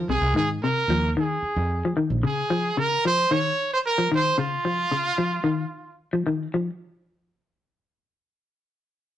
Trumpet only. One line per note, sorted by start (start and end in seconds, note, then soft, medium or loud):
0.10 0.35 G#4 medium
0.37 0.49 G#4 medium
0.63 1.13 A#4 medium
1.20 1.95 G#4 medium
2.26 2.80 G#4 medium
2.79 3.05 A#4 loud
3.07 3.34 C5 loud
3.32 3.72 C#5 medium
3.73 3.79 C5 loud
3.86 4.10 A#4 loud
4.15 4.38 C5 loud
4.39 5.95 F4 loud